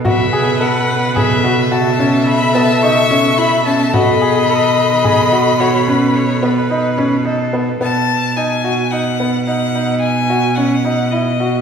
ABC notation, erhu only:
X:1
M:7/4
L:1/8
Q:1/4=108
K:Bmix
V:1 name="Erhu"
B6 e8 | d6 c B c B3 A2 | z12 z2 |]